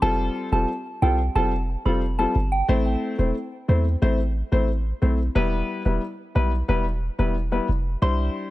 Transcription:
0.02 0.29 F1 loud
0.02 0.48 G3 medium
0.02 0.48 C4 medium
0.02 0.48 F4 medium
0.02 0.48 A4 loud
0.02 0.17 A5 loud
0.52 0.66 E1 medium
0.52 0.67 G3 medium
0.52 0.67 C4 medium
0.52 0.67 F4 medium
0.52 0.67 A4 medium
0.52 0.67 A5 medium
1.02 1.29 C2 loud
1.02 1.17 G3 medium
1.02 1.17 C4 medium
1.02 1.17 F4 medium
1.02 1.17 A4 medium
1.02 1.17 G5 medium
1.35 1.76 F1 loud
1.35 1.50 G3 medium
1.35 1.51 C4 medium
1.35 1.51 F4 medium
1.35 1.51 A4 loud
1.35 1.50 A5 medium
1.85 2.26 F1 medium
1.85 2.00 G3 medium
1.85 2.01 C4 medium
1.85 2.01 F4 medium
1.85 2.01 A4 medium
1.85 2.00 B5 medium
2.19 2.34 G3 medium
2.19 2.34 C4 medium
2.19 2.34 F4 medium
2.19 2.34 A4 medium
2.19 2.34 A5 medium
2.35 2.63 G1 loud
2.52 2.67 G5 medium
2.68 2.96 A1 loud
2.68 3.15 A3 loud
2.68 3.15 C4 medium
2.68 3.15 E4 medium
2.68 3.15 C5 loud
3.18 3.32 E1 medium
3.18 3.34 A3 medium
3.18 3.34 C4 medium
3.18 3.34 E4 medium
3.18 3.34 C5 medium
3.68 3.96 E2 loud
3.68 3.84 A3 medium
3.68 3.84 C4 medium
3.68 3.84 E4 medium
3.68 3.84 C5 medium
4.02 4.43 A1 loud
4.02 4.17 A3 medium
4.02 4.17 C4 medium
4.02 4.17 E4 medium
4.02 4.17 C5 loud
4.52 4.93 A1 loud
4.52 4.67 A3 medium
4.52 4.67 C4 medium
4.52 4.67 E4 medium
4.52 4.67 C5 medium
5.02 5.29 B1 medium
5.02 5.17 A3 medium
5.02 5.17 C4 medium
5.02 5.17 E4 medium
5.02 5.17 C5 medium
5.35 5.63 E1 loud
5.35 5.81 G3 medium
5.35 5.81 B3 medium
5.35 5.81 E4 medium
5.35 5.82 B4 loud
5.85 5.99 E1 medium
5.85 6.00 G3 medium
5.85 6.01 B3 medium
5.85 6.01 E4 medium
5.85 6.01 B4 medium
6.35 6.63 B1 loud
6.35 6.50 G3 medium
6.35 6.50 B3 medium
6.35 6.50 E4 medium
6.35 6.51 B4 medium
6.68 7.10 E1 loud
6.68 6.84 G3 medium
6.68 6.84 B3 medium
6.68 6.84 E4 medium
6.68 6.84 B4 loud
7.18 7.60 E1 loud
7.18 7.34 G3 medium
7.18 7.34 B3 medium
7.18 7.34 E4 medium
7.18 7.34 B4 medium
7.52 7.67 G3 medium
7.52 7.67 B3 medium
7.52 7.67 E4 medium
7.52 7.67 B4 medium
7.69 7.96 F1 medium
8.02 8.29 C2 loud
8.02 8.48 G3 medium
8.02 8.48 D4 medium
8.02 8.48 E4 medium
8.02 8.48 C5 loud
8.02 8.17 C6 loud

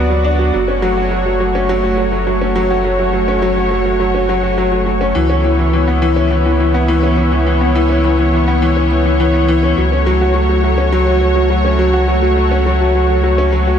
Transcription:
0.00 0.51 D2 medium
0.00 0.10 F#3 loud
0.00 0.50 B3 medium
0.00 0.56 B3 medium
0.00 0.25 D4 medium
0.00 0.56 F#4 medium
0.00 5.12 F#4 medium
0.00 0.50 D5 medium
0.10 0.24 F#3 medium
0.25 0.39 D4 loud
0.39 0.52 F#3 medium
0.54 5.13 F#1 medium
0.54 0.62 F#3 medium
0.54 5.12 A3 medium
0.54 5.12 C#5 medium
0.68 0.82 C#4 medium
0.82 0.96 F#3 loud
0.97 1.06 F#4 medium
1.11 1.25 F#3 medium
1.26 1.34 F#3 medium
1.40 1.49 F#3 medium
1.55 1.69 C#4 medium
1.69 1.83 F#3 loud
1.83 1.92 F#4 medium
1.98 2.11 F#3 medium
2.12 2.21 F#3 medium
2.27 2.35 F#3 medium
2.41 2.55 C#4 medium
2.56 2.70 F#3 loud
2.70 2.79 F#4 medium
2.85 2.98 F#3 medium
2.99 3.08 F#3 medium
3.13 3.22 F#3 medium
3.28 3.42 C#4 medium
3.42 3.56 F#3 loud
3.57 3.65 F#4 medium
3.71 3.84 F#3 medium
3.86 3.94 F#3 medium
4.00 4.08 F#3 medium
4.15 4.28 C#4 medium
4.29 4.43 F#3 loud
4.43 4.52 F#4 medium
4.58 4.70 F#3 medium
4.72 4.80 F#3 medium
4.86 4.95 F#3 medium
5.01 5.15 C#4 medium
5.15 9.74 C#2 medium
5.15 5.29 E3 loud
5.15 9.73 B3 medium
5.15 9.73 E4 medium
5.15 13.79 C#5 loud
5.30 5.38 C#4 medium
5.44 5.57 E3 medium
5.59 5.67 E3 medium
5.73 5.82 E3 medium
5.88 6.01 B3 medium
6.02 6.16 E3 loud
6.16 6.25 C#4 medium
6.31 6.44 E3 medium
6.45 6.54 E3 medium
6.60 6.68 E3 medium
6.74 6.88 B3 medium
6.88 7.02 E3 loud
7.03 7.11 C#4 medium
7.17 7.30 E3 medium
7.32 7.40 E3 medium
7.47 7.55 E3 medium
7.61 7.75 B3 medium
7.75 7.89 E3 loud
7.89 7.98 C#4 medium
8.04 8.17 E3 medium
8.19 8.27 E3 medium
8.33 8.41 E3 medium
8.48 8.61 B3 medium
8.62 8.76 E3 loud
8.77 8.85 C#4 medium
8.91 9.04 E3 medium
9.05 9.13 E3 medium
9.20 9.28 E3 medium
9.34 9.48 B3 medium
9.48 9.62 E3 loud
9.63 9.71 C#4 medium
9.77 13.79 C#2 medium
9.77 9.86 F#3 medium
9.77 13.79 A3 medium
9.77 13.79 F#4 medium
9.92 10.06 C#4 medium
10.06 10.20 F#3 loud
10.21 10.29 F#4 medium
10.35 10.48 F#3 medium
10.49 10.58 F#3 medium
10.64 10.72 F#3 medium
10.78 10.92 C#4 medium
10.93 11.06 F#3 loud
11.07 11.15 F#4 medium
11.21 11.34 F#3 medium
11.36 11.44 F#3 medium
11.50 11.58 F#3 medium
11.65 11.78 C#4 medium
11.79 11.93 F#3 loud
11.93 12.02 F#4 medium
12.08 12.21 F#3 medium
12.22 12.31 F#3 medium
12.37 12.45 F#3 medium
12.51 12.65 C#4 medium
12.66 12.80 F#3 medium
12.81 12.89 F#4 medium
12.95 13.08 F#3 medium
13.09 13.17 F#3 medium
13.24 13.32 F#3 medium
13.38 13.52 C#4 medium
13.53 13.66 F#3 loud
13.67 13.75 F#4 medium

